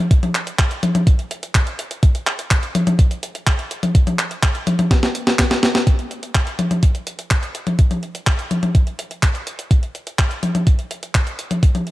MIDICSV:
0, 0, Header, 1, 2, 480
1, 0, Start_track
1, 0, Tempo, 480000
1, 108, Time_signature, 4, 2, 24, 8
1, 11911, End_track
2, 0, Start_track
2, 0, Title_t, "Drums"
2, 109, Note_on_c, 9, 36, 120
2, 109, Note_on_c, 9, 42, 92
2, 209, Note_off_c, 9, 36, 0
2, 209, Note_off_c, 9, 42, 0
2, 230, Note_on_c, 9, 42, 37
2, 230, Note_on_c, 9, 48, 60
2, 330, Note_off_c, 9, 42, 0
2, 330, Note_off_c, 9, 48, 0
2, 350, Note_on_c, 9, 39, 66
2, 350, Note_on_c, 9, 42, 37
2, 450, Note_off_c, 9, 39, 0
2, 450, Note_off_c, 9, 42, 0
2, 469, Note_on_c, 9, 42, 39
2, 569, Note_off_c, 9, 42, 0
2, 589, Note_on_c, 9, 36, 106
2, 589, Note_on_c, 9, 39, 116
2, 589, Note_on_c, 9, 42, 93
2, 689, Note_off_c, 9, 36, 0
2, 689, Note_off_c, 9, 39, 0
2, 689, Note_off_c, 9, 42, 0
2, 709, Note_on_c, 9, 42, 40
2, 809, Note_off_c, 9, 42, 0
2, 829, Note_on_c, 9, 42, 67
2, 829, Note_on_c, 9, 48, 86
2, 929, Note_off_c, 9, 42, 0
2, 929, Note_off_c, 9, 48, 0
2, 949, Note_on_c, 9, 42, 41
2, 949, Note_on_c, 9, 48, 87
2, 1049, Note_off_c, 9, 42, 0
2, 1049, Note_off_c, 9, 48, 0
2, 1069, Note_on_c, 9, 36, 121
2, 1069, Note_on_c, 9, 42, 94
2, 1169, Note_off_c, 9, 36, 0
2, 1169, Note_off_c, 9, 42, 0
2, 1190, Note_on_c, 9, 42, 39
2, 1290, Note_off_c, 9, 42, 0
2, 1310, Note_on_c, 9, 42, 67
2, 1410, Note_off_c, 9, 42, 0
2, 1430, Note_on_c, 9, 42, 41
2, 1530, Note_off_c, 9, 42, 0
2, 1549, Note_on_c, 9, 36, 102
2, 1549, Note_on_c, 9, 39, 109
2, 1549, Note_on_c, 9, 42, 94
2, 1649, Note_off_c, 9, 36, 0
2, 1649, Note_off_c, 9, 39, 0
2, 1649, Note_off_c, 9, 42, 0
2, 1669, Note_on_c, 9, 42, 40
2, 1769, Note_off_c, 9, 42, 0
2, 1789, Note_on_c, 9, 42, 67
2, 1889, Note_off_c, 9, 42, 0
2, 1909, Note_on_c, 9, 42, 41
2, 2009, Note_off_c, 9, 42, 0
2, 2028, Note_on_c, 9, 42, 96
2, 2029, Note_on_c, 9, 36, 118
2, 2128, Note_off_c, 9, 42, 0
2, 2129, Note_off_c, 9, 36, 0
2, 2149, Note_on_c, 9, 42, 41
2, 2249, Note_off_c, 9, 42, 0
2, 2269, Note_on_c, 9, 39, 66
2, 2269, Note_on_c, 9, 42, 38
2, 2369, Note_off_c, 9, 39, 0
2, 2369, Note_off_c, 9, 42, 0
2, 2389, Note_on_c, 9, 42, 42
2, 2489, Note_off_c, 9, 42, 0
2, 2509, Note_on_c, 9, 36, 104
2, 2509, Note_on_c, 9, 39, 120
2, 2509, Note_on_c, 9, 42, 98
2, 2609, Note_off_c, 9, 36, 0
2, 2609, Note_off_c, 9, 39, 0
2, 2609, Note_off_c, 9, 42, 0
2, 2629, Note_on_c, 9, 42, 43
2, 2729, Note_off_c, 9, 42, 0
2, 2749, Note_on_c, 9, 42, 67
2, 2749, Note_on_c, 9, 48, 84
2, 2849, Note_off_c, 9, 42, 0
2, 2849, Note_off_c, 9, 48, 0
2, 2869, Note_on_c, 9, 42, 42
2, 2869, Note_on_c, 9, 48, 90
2, 2969, Note_off_c, 9, 42, 0
2, 2969, Note_off_c, 9, 48, 0
2, 2989, Note_on_c, 9, 36, 116
2, 2989, Note_on_c, 9, 42, 94
2, 3089, Note_off_c, 9, 36, 0
2, 3089, Note_off_c, 9, 42, 0
2, 3109, Note_on_c, 9, 42, 40
2, 3209, Note_off_c, 9, 42, 0
2, 3230, Note_on_c, 9, 42, 69
2, 3330, Note_off_c, 9, 42, 0
2, 3350, Note_on_c, 9, 42, 43
2, 3450, Note_off_c, 9, 42, 0
2, 3469, Note_on_c, 9, 36, 99
2, 3470, Note_on_c, 9, 39, 108
2, 3470, Note_on_c, 9, 42, 95
2, 3569, Note_off_c, 9, 36, 0
2, 3570, Note_off_c, 9, 39, 0
2, 3570, Note_off_c, 9, 42, 0
2, 3590, Note_on_c, 9, 42, 41
2, 3690, Note_off_c, 9, 42, 0
2, 3710, Note_on_c, 9, 42, 69
2, 3810, Note_off_c, 9, 42, 0
2, 3830, Note_on_c, 9, 42, 43
2, 3830, Note_on_c, 9, 48, 66
2, 3930, Note_off_c, 9, 42, 0
2, 3930, Note_off_c, 9, 48, 0
2, 3949, Note_on_c, 9, 36, 122
2, 3950, Note_on_c, 9, 42, 100
2, 4049, Note_off_c, 9, 36, 0
2, 4050, Note_off_c, 9, 42, 0
2, 4070, Note_on_c, 9, 42, 39
2, 4070, Note_on_c, 9, 48, 63
2, 4170, Note_off_c, 9, 42, 0
2, 4170, Note_off_c, 9, 48, 0
2, 4190, Note_on_c, 9, 39, 70
2, 4190, Note_on_c, 9, 42, 39
2, 4290, Note_off_c, 9, 39, 0
2, 4290, Note_off_c, 9, 42, 0
2, 4310, Note_on_c, 9, 42, 41
2, 4410, Note_off_c, 9, 42, 0
2, 4429, Note_on_c, 9, 36, 104
2, 4430, Note_on_c, 9, 39, 117
2, 4430, Note_on_c, 9, 42, 99
2, 4529, Note_off_c, 9, 36, 0
2, 4530, Note_off_c, 9, 39, 0
2, 4530, Note_off_c, 9, 42, 0
2, 4550, Note_on_c, 9, 42, 43
2, 4650, Note_off_c, 9, 42, 0
2, 4670, Note_on_c, 9, 42, 69
2, 4670, Note_on_c, 9, 48, 83
2, 4770, Note_off_c, 9, 42, 0
2, 4770, Note_off_c, 9, 48, 0
2, 4790, Note_on_c, 9, 42, 44
2, 4790, Note_on_c, 9, 48, 85
2, 4890, Note_off_c, 9, 42, 0
2, 4890, Note_off_c, 9, 48, 0
2, 4909, Note_on_c, 9, 36, 123
2, 4909, Note_on_c, 9, 38, 61
2, 4909, Note_on_c, 9, 42, 97
2, 5009, Note_off_c, 9, 36, 0
2, 5009, Note_off_c, 9, 38, 0
2, 5009, Note_off_c, 9, 42, 0
2, 5030, Note_on_c, 9, 38, 59
2, 5030, Note_on_c, 9, 42, 43
2, 5130, Note_off_c, 9, 38, 0
2, 5130, Note_off_c, 9, 42, 0
2, 5150, Note_on_c, 9, 42, 70
2, 5250, Note_off_c, 9, 42, 0
2, 5270, Note_on_c, 9, 38, 70
2, 5270, Note_on_c, 9, 42, 43
2, 5370, Note_off_c, 9, 38, 0
2, 5370, Note_off_c, 9, 42, 0
2, 5389, Note_on_c, 9, 36, 102
2, 5389, Note_on_c, 9, 38, 84
2, 5389, Note_on_c, 9, 39, 116
2, 5389, Note_on_c, 9, 42, 95
2, 5489, Note_off_c, 9, 36, 0
2, 5489, Note_off_c, 9, 38, 0
2, 5489, Note_off_c, 9, 39, 0
2, 5489, Note_off_c, 9, 42, 0
2, 5510, Note_on_c, 9, 38, 78
2, 5510, Note_on_c, 9, 42, 40
2, 5610, Note_off_c, 9, 38, 0
2, 5610, Note_off_c, 9, 42, 0
2, 5630, Note_on_c, 9, 38, 102
2, 5630, Note_on_c, 9, 42, 72
2, 5730, Note_off_c, 9, 38, 0
2, 5730, Note_off_c, 9, 42, 0
2, 5749, Note_on_c, 9, 38, 95
2, 5749, Note_on_c, 9, 42, 44
2, 5849, Note_off_c, 9, 38, 0
2, 5849, Note_off_c, 9, 42, 0
2, 5869, Note_on_c, 9, 36, 117
2, 5869, Note_on_c, 9, 42, 93
2, 5969, Note_off_c, 9, 36, 0
2, 5969, Note_off_c, 9, 42, 0
2, 5989, Note_on_c, 9, 42, 39
2, 6089, Note_off_c, 9, 42, 0
2, 6109, Note_on_c, 9, 42, 36
2, 6209, Note_off_c, 9, 42, 0
2, 6229, Note_on_c, 9, 42, 40
2, 6329, Note_off_c, 9, 42, 0
2, 6349, Note_on_c, 9, 36, 116
2, 6349, Note_on_c, 9, 39, 116
2, 6349, Note_on_c, 9, 42, 94
2, 6449, Note_off_c, 9, 36, 0
2, 6449, Note_off_c, 9, 39, 0
2, 6449, Note_off_c, 9, 42, 0
2, 6469, Note_on_c, 9, 42, 41
2, 6569, Note_off_c, 9, 42, 0
2, 6589, Note_on_c, 9, 42, 67
2, 6589, Note_on_c, 9, 48, 78
2, 6689, Note_off_c, 9, 42, 0
2, 6689, Note_off_c, 9, 48, 0
2, 6709, Note_on_c, 9, 42, 41
2, 6709, Note_on_c, 9, 48, 79
2, 6809, Note_off_c, 9, 42, 0
2, 6809, Note_off_c, 9, 48, 0
2, 6828, Note_on_c, 9, 42, 96
2, 6829, Note_on_c, 9, 36, 117
2, 6928, Note_off_c, 9, 42, 0
2, 6929, Note_off_c, 9, 36, 0
2, 6948, Note_on_c, 9, 42, 40
2, 7048, Note_off_c, 9, 42, 0
2, 7068, Note_on_c, 9, 42, 69
2, 7168, Note_off_c, 9, 42, 0
2, 7188, Note_on_c, 9, 42, 41
2, 7288, Note_off_c, 9, 42, 0
2, 7308, Note_on_c, 9, 39, 116
2, 7308, Note_on_c, 9, 42, 92
2, 7309, Note_on_c, 9, 36, 116
2, 7408, Note_off_c, 9, 39, 0
2, 7408, Note_off_c, 9, 42, 0
2, 7409, Note_off_c, 9, 36, 0
2, 7428, Note_on_c, 9, 42, 38
2, 7528, Note_off_c, 9, 42, 0
2, 7548, Note_on_c, 9, 42, 67
2, 7648, Note_off_c, 9, 42, 0
2, 7668, Note_on_c, 9, 42, 41
2, 7668, Note_on_c, 9, 48, 63
2, 7768, Note_off_c, 9, 42, 0
2, 7768, Note_off_c, 9, 48, 0
2, 7788, Note_on_c, 9, 36, 127
2, 7788, Note_on_c, 9, 42, 91
2, 7888, Note_off_c, 9, 36, 0
2, 7888, Note_off_c, 9, 42, 0
2, 7908, Note_on_c, 9, 42, 38
2, 7908, Note_on_c, 9, 48, 55
2, 8008, Note_off_c, 9, 42, 0
2, 8008, Note_off_c, 9, 48, 0
2, 8028, Note_on_c, 9, 42, 35
2, 8128, Note_off_c, 9, 42, 0
2, 8149, Note_on_c, 9, 42, 38
2, 8249, Note_off_c, 9, 42, 0
2, 8268, Note_on_c, 9, 39, 121
2, 8268, Note_on_c, 9, 42, 92
2, 8269, Note_on_c, 9, 36, 124
2, 8368, Note_off_c, 9, 39, 0
2, 8368, Note_off_c, 9, 42, 0
2, 8369, Note_off_c, 9, 36, 0
2, 8389, Note_on_c, 9, 42, 39
2, 8489, Note_off_c, 9, 42, 0
2, 8509, Note_on_c, 9, 42, 63
2, 8509, Note_on_c, 9, 48, 75
2, 8609, Note_off_c, 9, 42, 0
2, 8609, Note_off_c, 9, 48, 0
2, 8629, Note_on_c, 9, 42, 40
2, 8629, Note_on_c, 9, 48, 76
2, 8729, Note_off_c, 9, 42, 0
2, 8729, Note_off_c, 9, 48, 0
2, 8748, Note_on_c, 9, 36, 122
2, 8749, Note_on_c, 9, 42, 90
2, 8848, Note_off_c, 9, 36, 0
2, 8849, Note_off_c, 9, 42, 0
2, 8869, Note_on_c, 9, 42, 39
2, 8969, Note_off_c, 9, 42, 0
2, 8989, Note_on_c, 9, 42, 68
2, 9089, Note_off_c, 9, 42, 0
2, 9109, Note_on_c, 9, 42, 40
2, 9209, Note_off_c, 9, 42, 0
2, 9228, Note_on_c, 9, 36, 120
2, 9229, Note_on_c, 9, 39, 117
2, 9229, Note_on_c, 9, 42, 85
2, 9328, Note_off_c, 9, 36, 0
2, 9329, Note_off_c, 9, 39, 0
2, 9329, Note_off_c, 9, 42, 0
2, 9349, Note_on_c, 9, 42, 37
2, 9449, Note_off_c, 9, 42, 0
2, 9469, Note_on_c, 9, 42, 65
2, 9569, Note_off_c, 9, 42, 0
2, 9588, Note_on_c, 9, 42, 41
2, 9688, Note_off_c, 9, 42, 0
2, 9708, Note_on_c, 9, 36, 126
2, 9709, Note_on_c, 9, 42, 91
2, 9808, Note_off_c, 9, 36, 0
2, 9809, Note_off_c, 9, 42, 0
2, 9829, Note_on_c, 9, 42, 36
2, 9929, Note_off_c, 9, 42, 0
2, 9949, Note_on_c, 9, 42, 34
2, 10049, Note_off_c, 9, 42, 0
2, 10069, Note_on_c, 9, 42, 38
2, 10169, Note_off_c, 9, 42, 0
2, 10188, Note_on_c, 9, 36, 125
2, 10188, Note_on_c, 9, 39, 118
2, 10188, Note_on_c, 9, 42, 86
2, 10288, Note_off_c, 9, 36, 0
2, 10288, Note_off_c, 9, 39, 0
2, 10288, Note_off_c, 9, 42, 0
2, 10309, Note_on_c, 9, 42, 37
2, 10409, Note_off_c, 9, 42, 0
2, 10428, Note_on_c, 9, 42, 64
2, 10428, Note_on_c, 9, 48, 73
2, 10528, Note_off_c, 9, 42, 0
2, 10528, Note_off_c, 9, 48, 0
2, 10549, Note_on_c, 9, 42, 38
2, 10549, Note_on_c, 9, 48, 78
2, 10649, Note_off_c, 9, 42, 0
2, 10649, Note_off_c, 9, 48, 0
2, 10668, Note_on_c, 9, 36, 127
2, 10668, Note_on_c, 9, 42, 85
2, 10768, Note_off_c, 9, 36, 0
2, 10768, Note_off_c, 9, 42, 0
2, 10788, Note_on_c, 9, 42, 39
2, 10888, Note_off_c, 9, 42, 0
2, 10908, Note_on_c, 9, 42, 63
2, 11008, Note_off_c, 9, 42, 0
2, 11028, Note_on_c, 9, 42, 38
2, 11128, Note_off_c, 9, 42, 0
2, 11148, Note_on_c, 9, 36, 120
2, 11148, Note_on_c, 9, 39, 120
2, 11148, Note_on_c, 9, 42, 86
2, 11248, Note_off_c, 9, 36, 0
2, 11248, Note_off_c, 9, 39, 0
2, 11248, Note_off_c, 9, 42, 0
2, 11268, Note_on_c, 9, 42, 38
2, 11368, Note_off_c, 9, 42, 0
2, 11388, Note_on_c, 9, 42, 64
2, 11488, Note_off_c, 9, 42, 0
2, 11508, Note_on_c, 9, 42, 39
2, 11508, Note_on_c, 9, 48, 60
2, 11608, Note_off_c, 9, 42, 0
2, 11608, Note_off_c, 9, 48, 0
2, 11628, Note_on_c, 9, 36, 126
2, 11629, Note_on_c, 9, 42, 87
2, 11728, Note_off_c, 9, 36, 0
2, 11729, Note_off_c, 9, 42, 0
2, 11749, Note_on_c, 9, 42, 36
2, 11749, Note_on_c, 9, 48, 58
2, 11849, Note_off_c, 9, 42, 0
2, 11849, Note_off_c, 9, 48, 0
2, 11868, Note_on_c, 9, 42, 33
2, 11911, Note_off_c, 9, 42, 0
2, 11911, End_track
0, 0, End_of_file